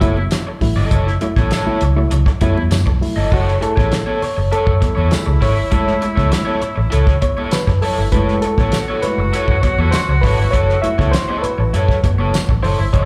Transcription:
0.01 F#1 F#3 A3 E4 A4 C#5, kick, closed hi-hat, muted conga, high conga
0.16 muted overdriven electric guitar stroke, high conga
0.31 A3 E4, muted overdriven electric guitar stroke, snare, closed hi-hat, tambourine
0.47 muted overdriven electric guitar stroke
0.61 A1 F#3 A3 E4, kick, snare, open hi-hat, muted conga, low conga
0.76 G1 E4 A4 D#5
0.91 F#1 E4 A4 C#5, kick, closed hi-hat, muted conga, low conga
1.06 A3 E4, muted overdriven electric guitar stroke, snare
1.21 F#3 A3 E4, muted overdriven electric guitar stroke, closed hi-hat, muted conga
1.36 A1 E4 A4 C#5, kick, snare, high conga
1.51 E4 A4 C#5, snare, closed hi-hat, tambourine
1.66 F#3 A3 E4, muted fingered electric bass stroke, high conga
1.81 C#2, muted overdriven electric guitar stroke, closed hi-hat
1.96 F#3 A3 E4, muted overdriven electric guitar stroke
2.11 C#2, muted overdriven electric guitar stroke, closed hi-hat, high conga
2.26 muted overdriven electric guitar stroke, kick, snare
2.41 F#2 F#3 A3 E4 A4 C#5, kick, closed hi-hat, muted conga, high conga
2.55 E2, muted overdriven electric guitar stroke, high conga
2.71 F#2 A3 E4, muted overdriven electric guitar stroke, snare, closed hi-hat, tambourine
2.86 B1, muted overdriven electric guitar stroke, kick
3.01 F#3 A3 E4, open hi-hat, low conga
3.16 G1 E4 A4 D#5
3.31 F#1 E4 F#4 A4 C#5, kick, crash, muted conga, low conga
3.48 snare
3.61 A3 E4 G#4 A4, muted overdriven electric guitar stroke, closed hi-hat, muted conga
3.76 A1 E4 A4 C#5, kick, snare, high conga
3.91 muted overdriven electric guitar stroke, snare, closed hi-hat, tambourine, muted conga
4.06 E4 A4 C#5, high conga
4.22 C#5, muted overdriven electric guitar stroke, muted fingered electric bass stroke, snare, open hi-hat
4.37 F#1, muted overdriven electric guitar stroke
4.52 E4 A4 C#5, muted fingered electric bass stroke, closed hi-hat, muted conga
4.67 F#2, kick
4.81 muted overdriven electric guitar stroke, kick, snare, closed hi-hat, muted conga, high conga
4.95 E2 E4 A4 C#5, high conga
5.11 A3 E4 G#4, muted overdriven electric guitar stroke, snare, closed hi-hat, tambourine
5.26 C#2, muted overdriven electric guitar stroke
5.41 G#1 E4 A4 C#5, kick, snare, open hi-hat, muted conga, low conga
5.56 G1, muted overdriven electric guitar stroke
5.71 F#1 G#3 A3 E4 A4 C#5, kick, closed hi-hat, muted conga, low conga
5.87 snare
6.01 muted overdriven electric guitar stroke, closed hi-hat, muted conga
6.16 C#2 E4 A4 C#5, kick, snare, high conga
6.30 muted overdriven electric guitar stroke, snare, closed hi-hat, tambourine, muted conga
6.45 E4 A4 C#5, high conga
6.60 muted overdriven electric guitar stroke, muted fingered electric bass stroke, closed hi-hat, muted conga
6.76 A1, muted overdriven electric guitar stroke
6.90 C#2 E4 A4 C#5, closed hi-hat, muted conga
7.07 kick, snare
7.21 C#5, muted overdriven electric guitar stroke, kick, closed hi-hat, muted conga, high conga
7.37 E4 A4 C#5, high conga
7.51 B4, muted overdriven electric guitar stroke, snare, closed hi-hat, tambourine, muted conga
7.67 F#2, muted overdriven electric guitar stroke, kick, snare
7.81 E4 A4 C#5, open hi-hat, low conga
7.98 G1, muted overdriven electric guitar stroke
8.12 F#1 G#3 A3 E4 F#4 A4 B4 C#5, kick, closed hi-hat, muted conga, low conga
8.28 snare
8.42 A4, muted overdriven electric guitar stroke, closed hi-hat
8.57 A1 E4 A4 C#5, kick, snare, high conga
8.72 muted overdriven electric guitar stroke, snare, closed hi-hat, tambourine
8.88 E4 A4 C#5, high conga
9.02 G#3 A3 E4 B4, muted overdriven electric guitar stroke, muted fingered electric bass stroke, snare, closed hi-hat, muted conga
9.18 F#1, muted overdriven electric guitar stroke
9.33 E4 A4 C#5, muted fingered electric bass stroke, closed hi-hat
9.48 F#2, kick
9.62 C#5, muted overdriven electric guitar stroke, kick, snare, closed hi-hat, muted conga, high conga
9.78 E2 E4 A4 C#5, high conga
9.91 C5, muted overdriven electric guitar stroke, snare, closed hi-hat, tambourine
10.08 C#2, muted overdriven electric guitar stroke
10.21 G#1 E4 A4 B4, kick, snare, open hi-hat, muted conga, low conga
10.26 C#5
10.38 G1, muted overdriven electric guitar stroke
10.51 F#1 E4 A4 C#5, kick, closed hi-hat, low conga
10.69 snare
10.82 F#3 A3 E4 E5, muted overdriven electric guitar stroke, closed hi-hat
10.98 C#2 E4 A4 C#5, kick, snare, high conga
11.12 C5, muted overdriven electric guitar stroke, snare, closed hi-hat, tambourine
11.28 E4 A4 C#5, high conga
11.42 B4, muted overdriven electric guitar stroke, muted fingered electric bass stroke, closed hi-hat, muted conga
11.58 A1, muted overdriven electric guitar stroke
11.73 F#2 E4 A4 C#5, closed hi-hat, muted conga
11.89 kick, snare
12.04 F#2, muted overdriven electric guitar stroke, kick, closed hi-hat, muted conga, high conga
12.18 F#1 E4 A4 C#5, high conga
12.34 muted overdriven electric guitar stroke, snare, closed hi-hat, tambourine
12.49 A1, muted overdriven electric guitar stroke, kick
12.63 F#1 E4 A4 C5 C#5, open hi-hat, muted conga, low conga
12.79 G1, muted overdriven electric guitar stroke
12.93 F#1 E4 A4 C#5, kick, closed hi-hat, low conga

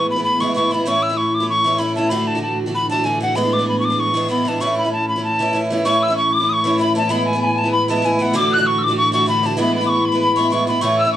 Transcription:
Already playing: A2 E3 G#3 B3 E4
0.10 B5
0.16 G#3 B3 E4
0.24 B5
0.40 E3 G#3 B3 E4 C#6
0.54 E3 G#3 B3 E4 C#6
0.71 E3 G#3 B3 E4 B5
0.85 A2 E3 A3 C#4 E4 C#6
1.03 E6
1.10 A3 C#4 E4
1.17 C#6
1.34 D6
1.40 A3 C#4 E4
1.49 C#6
1.64 E3 A3 C#4 E4
1.78 E3 A3 C#4 E4 B5
1.95 E3 A3 C#4 E4 A5
2.09 D2 A2 D3 A3 D4 F#4 B5
2.27 A5
2.35 D3 A3 D4 F#4
2.43 A5
2.66 D3 A3 D4 F#4
2.75 B5
2.89 D3 A3 D4 F#4 A5
3.04 D3 A3 D4 F#4 G#5
3.20 D3 A3 D4 F#4 F#5
3.35 E3 G#3 B3 D4 B5
3.53 D6
3.59 G#3 B3 D4
3.68 B5
3.80 C#6
3.85 D6
3.90 G#3 B3 D4
4.00 C#6
4.14 E3 G#3 B3 D4
4.28 E3 G#3 B3 D4 B5
4.45 E3 G#3 B3 D4 A5
4.60 A2 E3 A3 C#4 E4 C#6
4.78 B5
4.85 A3 C#4 E4
4.93 A5
5.09 B5
5.16 A3 C#4 E4
5.24 A5
5.39 E3 A3 C#4 E4
5.53 E3 A3 C#4 E4
5.70 E3 A3 C#4 E4
5.85 A2 E3 A3 C#4 E4 C#6
6.02 E6
6.08 A3 C#4 E4
6.15 C#6
6.32 D6
6.40 A3 C#4 E4
6.48 D#6
6.52 C#6
6.64 E3 A3 C#4 E4
6.78 E3 A3 C#4 E4 B5
6.95 E3 A3 C#4 E4 A5
7.09 E3 G#3 B3 E4 B5
7.26 G#5
7.33 G#3 B3 E4
7.41 G#5 B5
7.58 A5
7.64 G#3 B3 E4
7.72 B5
7.88 E3 G#3 B3 E4 A5
8.02 E3 G#3 B3 E4 G#5
8.19 E3 G#3 B3 E4 F#5
8.33 D2 A2 D3 A3 D4 F#4 D6
8.51 F#6
8.57 D3 A3 D4 F#4
8.65 C#6
8.78 E6
8.82 D6
8.88 D3 A3 D4 F#4
8.97 C#6
9.12 D3 A3 D4 F#4 C#6
9.26 D3 A3 D4 F#4 B5
9.43 D3 A3 D4 F#4 A5
9.57 E3 G#3 B3 E4 B5
9.75 B5
9.81 G#3 B3 E4
9.86 C#6 D6
9.91 C#6
10.05 B5
10.12 G#3 B3 E4
10.20 B5
10.36 E3 G#3 B3 E4 C#6
10.50 E3 G#3 B3 E4 C#6
10.67 E3 G#3 B3 E4 B5
10.81 A2 E3 A3 C#4 E4 C#6
10.99 E6
11.05 A3 C#4 E4
11.12 C#6

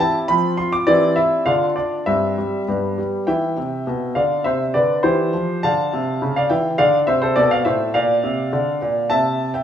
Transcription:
Already playing: C4 G4
0.00 E4 A5
0.28 F3 C4 F4 B5
0.57 F4 C6
0.73 D6
0.87 E3 C4 G4 D5
1.16 E4 E5
1.46 D3 D4 F4 F5
1.76 D4 D5
2.06 G2 C4 G4 E5
2.38 G3
2.68 G2 B3 G4
2.98 G3
3.27 E3 E5 G5
3.57 C3
3.87 B2
4.15 D3 D5 F5
4.44 C3 C5 E5
4.74 D3 B4 D5
5.03 E3 G4 C5
5.33 F3
5.63 D3 F5 A5
5.93 C3
6.22 C#3
6.36 D5 F5
6.50 E3 E5 G5
6.78 D3 D5 F5
7.07 C3 C5 E5
7.22 A4 C5
7.36 B2 A4 D5
7.51 D5 F5
7.65 A2 C5 E5
7.94 A#2 D5 F5
8.24 C3
8.53 D3
8.82 A#2
9.10 C3 E5 A5
9.54 E5 G5

